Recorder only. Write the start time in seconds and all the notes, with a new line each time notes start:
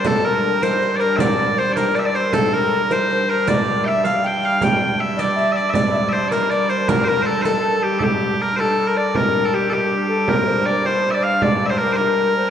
0.05 A4
0.25 A#4
0.63 C5
1.01 A#4
1.21 D5
1.58 C5
1.76 A#4
1.95 D5
2.05 D5
2.15 C5
2.33 A4
2.54 A#4
2.91 C5
3.10 C5
3.30 A#4
3.48 D5
3.86 E5
4.05 F5
4.24 G5
4.62 G5
5.16 D5
5.36 E5
5.54 D5
5.74 D5
5.93 E5
5.97 D5
6.30 A#4
6.51 D5
6.70 C5
6.88 A#4
7.06 A#4
7.46 A4
7.83 G4
8.03 A4
8.07 G4
8.61 A4
8.89 A#4
8.97 D5
9.15 C5
9.20 A#4
9.53 G4
9.71 G4
10.08 A4
10.29 A#4
10.47 C5
10.66 D5
10.86 C5
11.16 D5
11.25 F5
11.44 D5
11.71 C5
11.81 A#4
11.99 A#4
12.37 C5